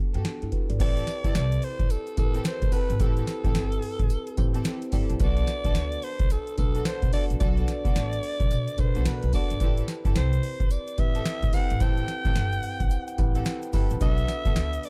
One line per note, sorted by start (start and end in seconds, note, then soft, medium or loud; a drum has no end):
0.00 0.48 B3 medium
0.00 0.21 D4 medium
0.00 0.22 F#4 medium
0.00 0.22 A4 medium
0.14 0.23 G2 medium
0.14 0.30 B3 medium
0.14 0.31 F#4 medium
0.14 0.31 G4 medium
0.14 0.31 A4 medium
0.14 closed hi-hat soft
0.25 0.41 D4 soft
0.25 0.41 G4 medium
0.25 snare loud
0.25 closed hi-hat medium
0.42 0.50 G2 medium
0.42 0.52 E4 medium
0.42 0.52 A4 medium
0.42 closed hi-hat soft
0.52 0.69 F#4 medium
0.52 0.69 B4 medium
0.52 kick medium
0.52 closed hi-hat medium
0.70 0.78 G#1 medium
0.70 0.96 A4 medium
0.70 0.96 D5 medium
0.70 closed hi-hat medium
0.80 1.01 A1 loud
0.80 1.00 C4 medium
0.80 1.61 C4 medium
0.80 1.00 E4 medium
0.80 1.61 E4 medium
0.80 1.01 G4 medium
0.80 1.61 G4 medium
0.80 1.01 A4 loud
0.80 1.61 B4 medium
0.80 1.32 D5 loud
0.80 kick loud
0.80 closed hi-hat medium
0.80 crash loud
0.80 tambourine medium
0.80 shaker medium
0.97 closed hi-hat soft
0.97 shaker medium
1.07 snare medium
1.07 closed hi-hat medium
1.07 tambourine medium
1.07 shaker soft
1.24 1.32 G1 medium
1.24 1.41 C4 medium
1.24 1.41 E4 medium
1.24 1.41 G4 medium
1.24 1.41 A4 medium
1.24 kick medium
1.24 closed hi-hat medium
1.24 shaker medium
1.35 1.56 C2 loud
1.35 1.66 D5 loud
1.35 snare loud
1.35 closed hi-hat medium
1.35 tambourine loud
1.35 shaker medium
1.52 closed hi-hat medium
1.52 shaker medium
1.62 1.93 C5 loud
1.62 open hi-hat medium
1.62 shaker medium
1.79 1.88 A1 medium
1.79 kick medium
1.79 closed hi-hat medium
1.79 shaker soft
1.90 2.18 A4 medium
1.90 closed hi-hat medium
1.90 tambourine medium
1.90 shaker medium
2.07 closed hi-hat medium
2.07 shaker medium
2.17 2.39 A1 medium
2.17 2.61 C4 medium
2.17 2.61 E4 medium
2.17 2.61 G4 medium
2.17 2.48 A4 loud
2.17 2.26 A#4 medium
2.17 kick medium
2.17 closed hi-hat medium
2.17 tambourine medium
2.24 2.64 B4 medium
2.34 2.51 C4 medium
2.34 2.51 E4 medium
2.34 2.51 G4 medium
2.34 2.51 A4 medium
2.34 closed hi-hat medium
2.34 shaker medium
2.44 2.75 C5 loud
2.44 snare loud
2.44 closed hi-hat medium
2.44 tambourine loud
2.44 shaker medium
2.62 2.70 A2 medium
2.62 kick loud
2.62 closed hi-hat medium
2.62 shaker medium
2.71 2.94 C4 medium
2.71 2.93 C4 medium
2.71 2.94 E4 medium
2.71 2.93 E4 medium
2.71 2.94 G4 medium
2.71 2.93 G4 medium
2.71 2.93 A4 medium
2.71 2.95 B4 medium
2.71 3.03 B4 loud
2.71 kick medium
2.71 open hi-hat medium
2.71 tambourine medium
2.71 shaker soft
2.89 2.98 G#1 medium
2.89 closed hi-hat medium
2.89 shaker medium
2.99 3.21 A1 loud
2.99 3.81 C4 medium
2.99 3.20 C4 loud
2.99 3.20 E4 medium
2.99 3.81 E4 medium
2.99 3.21 G4 medium
2.99 3.81 G4 medium
2.99 3.21 A4 loud
2.99 4.93 A4 loud
2.99 3.81 B4 medium
2.99 kick loud
2.99 closed hi-hat medium
2.99 tambourine medium
2.99 shaker medium
3.17 closed hi-hat soft
3.17 shaker medium
3.27 snare medium
3.27 closed hi-hat medium
3.27 tambourine medium
3.27 shaker soft
3.44 3.52 A1 medium
3.44 3.61 C4 medium
3.44 3.61 E4 medium
3.44 3.61 G4 medium
3.44 3.61 A4 medium
3.44 kick loud
3.44 closed hi-hat medium
3.44 shaker medium
3.55 3.76 G1 loud
3.55 snare loud
3.55 closed hi-hat medium
3.55 tambourine medium
3.55 shaker medium
3.72 closed hi-hat medium
3.72 shaker medium
3.82 open hi-hat medium
3.82 shaker soft
3.99 4.08 A1 medium
3.99 kick loud
3.99 closed hi-hat medium
3.99 shaker soft
4.10 closed hi-hat medium
4.10 tambourine medium
4.10 shaker medium
4.27 closed hi-hat soft
4.27 shaker medium
4.37 4.59 A1 loud
4.37 4.81 C4 loud
4.37 4.81 E4 medium
4.37 4.81 G4 medium
4.37 4.81 C5 loud
4.37 kick medium
4.37 closed hi-hat medium
4.37 tambourine medium
4.54 4.71 C4 medium
4.54 4.71 E4 medium
4.54 4.71 G4 medium
4.54 4.71 A4 medium
4.54 closed hi-hat medium
4.54 shaker medium
4.64 snare loud
4.64 closed hi-hat medium
4.64 tambourine loud
4.64 shaker medium
4.82 closed hi-hat medium
4.82 shaker soft
4.92 5.06 G1 medium
4.92 5.13 C4 medium
4.92 5.14 C4 medium
4.92 5.13 E4 medium
4.92 5.15 E4 medium
4.92 5.13 G4 medium
4.92 5.15 G4 medium
4.92 5.13 A4 medium
4.92 5.15 D5 loud
4.92 kick medium
4.92 open hi-hat medium
4.92 tambourine medium
4.92 shaker soft
5.10 5.18 A#1 loud
5.10 closed hi-hat medium
5.10 shaker medium
5.20 5.41 B1 loud
5.20 5.41 B3 medium
5.20 6.01 D4 medium
5.20 5.41 D4 medium
5.20 6.01 F#4 medium
5.20 5.41 F#4 medium
5.20 5.41 A4 loud
5.20 6.01 A4 medium
5.20 6.02 B4 medium
5.20 6.06 D5 loud
5.20 kick loud
5.20 closed hi-hat medium
5.20 tambourine medium
5.20 shaker medium
5.37 closed hi-hat soft
5.37 shaker soft
5.47 snare medium
5.47 closed hi-hat medium
5.47 tambourine medium
5.47 shaker soft
5.64 5.73 A1 medium
5.64 5.81 B3 medium
5.64 5.81 D4 medium
5.64 5.81 F#4 medium
5.64 5.81 A4 medium
5.64 kick medium
5.64 closed hi-hat medium
5.64 shaker medium
5.75 5.96 D2 loud
5.75 snare loud
5.75 closed hi-hat medium
5.75 tambourine medium
5.75 shaker medium
5.92 closed hi-hat medium
5.92 shaker medium
6.02 6.34 C5 loud
6.02 open hi-hat medium
6.02 shaker medium
6.19 6.28 B1 medium
6.19 kick loud
6.19 closed hi-hat medium
6.19 shaker soft
6.30 6.58 A4 loud
6.30 closed hi-hat medium
6.30 tambourine medium
6.30 shaker medium
6.47 closed hi-hat medium
6.47 shaker medium
6.57 6.79 B1 loud
6.57 7.01 D4 medium
6.57 7.01 F#4 medium
6.57 7.01 A4 medium
6.57 6.88 A4 loud
6.57 7.02 B4 medium
6.57 kick medium
6.57 closed hi-hat medium
6.57 tambourine medium
6.75 6.91 B3 medium
6.75 6.91 D4 medium
6.75 6.91 F#4 medium
6.75 6.91 A4 medium
6.75 closed hi-hat medium
6.75 shaker medium
6.85 7.13 C5 loud
6.85 snare loud
6.85 closed hi-hat medium
6.85 tambourine loud
6.85 shaker medium
7.02 7.11 B2 medium
7.02 kick medium
7.02 closed hi-hat medium
7.02 shaker soft
7.13 7.33 B3 medium
7.13 7.35 D4 medium
7.13 7.33 D4 medium
7.13 7.35 F#4 medium
7.13 7.34 F#4 medium
7.13 7.35 A4 medium
7.13 7.34 A4 medium
7.13 7.26 D5 loud
7.13 7.35 D5 medium
7.13 kick medium
7.13 open hi-hat medium
7.13 tambourine medium
7.13 shaker soft
7.30 7.38 A#1 medium
7.30 closed hi-hat medium
7.30 shaker medium
7.40 7.62 B1 loud
7.40 7.61 B3 medium
7.40 8.21 D4 medium
7.40 7.61 D4 medium
7.40 8.21 F#4 medium
7.40 7.61 F#4 medium
7.40 7.61 A4 loud
7.40 8.22 A4 medium
7.40 8.81 D5 loud
7.40 8.22 D5 medium
7.40 kick loud
7.40 closed hi-hat medium
7.40 tambourine medium
7.40 shaker medium
7.57 closed hi-hat soft
7.57 shaker soft
7.67 snare medium
7.67 closed hi-hat medium
7.67 tambourine medium
7.67 shaker soft
7.85 7.93 B1 medium
7.85 8.01 B3 medium
7.85 8.01 D4 medium
7.85 8.01 F#4 medium
7.85 8.01 A4 medium
7.85 kick loud
7.85 closed hi-hat soft
7.85 shaker medium
7.95 8.17 A1 medium
7.95 snare loud
7.95 closed hi-hat medium
7.95 tambourine loud
7.95 shaker medium
8.12 closed hi-hat medium
8.12 shaker medium
8.23 open hi-hat medium
8.23 shaker soft
8.40 8.48 B1 medium
8.40 kick loud
8.40 closed hi-hat medium
8.40 shaker soft
8.51 8.64 B2 loud
8.51 closed hi-hat medium
8.51 tambourine medium
8.51 shaker medium
8.68 closed hi-hat soft
8.68 shaker medium
8.78 8.92 B2 loud
8.78 9.21 D4 medium
8.78 9.21 F#4 medium
8.78 9.21 A4 medium
8.78 8.86 A#4 medium
8.78 9.09 C5 medium
8.78 kick medium
8.78 closed hi-hat medium
8.78 tambourine medium
8.85 9.25 B4 medium
8.95 9.04 B1 loud
8.95 9.11 B3 medium
8.95 9.11 D4 medium
8.95 9.11 F#4 medium
8.95 9.12 A4 medium
8.95 closed hi-hat medium
8.95 shaker medium
9.05 9.19 B2 loud
9.05 9.34 B4 medium
9.05 snare loud
9.05 closed hi-hat medium
9.05 tambourine loud
9.05 shaker medium
9.23 9.31 B1 loud
9.23 closed hi-hat medium
9.23 shaker soft
9.33 9.54 B3 medium
9.33 9.55 D4 medium
9.33 9.54 D4 medium
9.33 9.55 F#4 medium
9.33 9.54 F#4 medium
9.33 9.54 A4 medium
9.33 9.55 A4 medium
9.33 9.55 D5 medium
9.33 9.86 D5 loud
9.33 kick medium
9.33 open hi-hat medium
9.33 tambourine medium
9.33 shaker soft
9.50 9.59 G#1 medium
9.50 closed hi-hat medium
9.50 shaker medium
9.60 9.82 A1 loud
9.60 9.81 C4 medium
9.60 10.41 C4 medium
9.60 9.81 E4 medium
9.60 10.42 E4 medium
9.60 9.81 G4 medium
9.60 10.42 G4 medium
9.60 9.81 A4 loud
9.60 10.42 B4 medium
9.60 kick loud
9.60 closed hi-hat medium
9.60 tambourine medium
9.60 shaker medium
9.77 closed hi-hat soft
9.77 shaker soft
9.88 snare medium
9.88 closed hi-hat medium
9.88 tambourine medium
9.88 shaker soft
10.05 10.13 G1 loud
10.05 10.21 C4 medium
10.05 10.21 E4 medium
10.05 10.21 G4 medium
10.05 10.21 A4 medium
10.05 kick medium
10.05 closed hi-hat medium
10.05 shaker medium
10.15 10.37 C2 loud
10.15 10.73 C5 medium
10.15 snare loud
10.15 closed hi-hat medium
10.15 tambourine loud
10.15 shaker medium
10.33 closed hi-hat medium
10.33 shaker medium
10.43 open hi-hat medium
10.43 shaker soft
10.60 10.68 A1 medium
10.60 kick loud
10.60 closed hi-hat medium
10.60 shaker soft
10.70 11.01 D5 medium
10.70 closed hi-hat medium
10.70 tambourine medium
10.70 shaker medium
10.88 closed hi-hat soft
10.88 shaker medium
10.98 11.20 A1 medium
10.98 11.41 C4 medium
10.98 11.41 E4 medium
10.98 11.42 G4 medium
10.98 11.42 B4 medium
10.98 11.56 E5 loud
10.98 kick medium
10.98 closed hi-hat medium
10.98 tambourine medium
11.15 11.31 C4 medium
11.15 11.31 E4 medium
11.15 11.32 G4 medium
11.15 11.32 A4 medium
11.15 closed hi-hat medium
11.15 shaker medium
11.25 snare loud
11.25 closed hi-hat medium
11.25 tambourine loud
11.25 shaker medium
11.43 11.51 A2 loud
11.43 kick medium
11.43 closed hi-hat medium
11.43 shaker soft
11.53 11.75 C4 medium
11.53 11.74 C4 medium
11.53 11.75 E4 medium
11.53 11.74 E4 medium
11.53 11.74 G4 medium
11.53 11.75 G4 medium
11.53 11.74 A4 medium
11.53 11.75 B4 medium
11.53 11.83 F#5 loud
11.53 kick medium
11.53 open hi-hat medium
11.53 tambourine medium
11.53 shaker soft
11.70 11.79 G#1 loud
11.70 closed hi-hat medium
11.70 shaker medium
11.80 12.02 A1 loud
11.80 12.61 C4 medium
11.80 12.01 C4 medium
11.80 12.62 E4 medium
11.80 12.01 E4 medium
11.80 12.62 G4 medium
11.80 12.01 G4 medium
11.80 12.02 A4 loud
11.80 12.62 C5 medium
11.80 13.46 G5 loud
11.80 kick loud
11.80 closed hi-hat medium
11.80 tambourine medium
11.80 shaker medium
11.97 closed hi-hat soft
11.97 shaker soft
12.07 snare medium
12.07 closed hi-hat medium
12.07 tambourine medium
12.07 shaker soft
12.25 12.33 A1 loud
12.25 12.41 C4 medium
12.25 12.41 E4 medium
12.25 12.42 G4 medium
12.25 12.42 A4 medium
12.25 kick loud
12.25 closed hi-hat soft
12.25 shaker medium
12.35 12.57 G1 loud
12.35 snare loud
12.35 closed hi-hat medium
12.35 tambourine medium
12.35 shaker medium
12.52 closed hi-hat medium
12.52 shaker medium
12.63 12.79 F#5 medium
12.63 open hi-hat medium
12.63 shaker medium
12.80 12.88 A1 medium
12.80 12.90 G5 medium
12.80 kick loud
12.80 closed hi-hat medium
12.80 shaker soft
12.90 13.07 F#5 medium
12.90 closed hi-hat medium
12.90 tambourine medium
12.90 shaker medium
13.08 13.34 G5 medium
13.08 closed hi-hat medium
13.08 shaker medium
13.18 13.40 A1 loud
13.18 13.61 C4 medium
13.18 13.62 E4 medium
13.18 13.62 G4 medium
13.18 13.62 B4 loud
13.18 kick loud
13.18 closed hi-hat medium
13.18 tambourine medium
13.35 13.51 C4 medium
13.35 13.51 E4 medium
13.35 13.52 G4 medium
13.35 13.52 A4 medium
13.35 13.45 F#5 medium
13.35 closed hi-hat medium
13.35 shaker medium
13.45 13.71 G5 medium
13.45 snare loud
13.45 closed hi-hat medium
13.45 tambourine loud
13.45 shaker medium
13.62 closed hi-hat medium
13.62 shaker medium
13.73 13.87 G1 medium
13.73 13.95 C4 medium
13.73 13.94 C4 medium
13.73 13.94 E4 medium
13.73 13.95 E4 medium
13.73 13.94 G4 medium
13.73 13.95 G4 medium
13.73 13.94 A4 medium
13.73 13.96 B4 medium
13.73 13.99 B5 medium
13.73 kick medium
13.73 open hi-hat medium
13.73 tambourine medium
13.73 shaker soft
13.90 13.99 A#1 loud
13.90 closed hi-hat medium
13.90 shaker medium
14.00 14.22 B1 loud
14.00 14.21 B3 loud
14.00 14.82 D4 medium
14.00 14.21 D4 medium
14.00 14.21 F#4 medium
14.00 14.82 F#4 medium
14.00 14.22 A4 loud
14.00 14.82 A4 medium
14.00 14.82 B4 medium
14.00 14.86 E5 loud
14.00 kick loud
14.00 closed hi-hat medium
14.00 tambourine medium
14.00 shaker medium
14.17 closed hi-hat soft
14.17 shaker soft
14.28 snare medium
14.28 closed hi-hat medium
14.28 tambourine medium
14.28 shaker soft
14.45 14.54 A1 medium
14.45 14.61 B3 medium
14.45 14.62 D4 medium
14.45 14.62 F#4 medium
14.45 14.62 A4 medium
14.45 kick loud
14.45 closed hi-hat medium
14.45 shaker medium
14.56 14.77 D2 loud
14.56 snare loud
14.56 closed hi-hat medium
14.56 tambourine loud
14.56 shaker medium
14.73 closed hi-hat medium
14.73 shaker medium
14.83 14.89 D5 loud
14.83 open hi-hat medium
14.83 shaker soft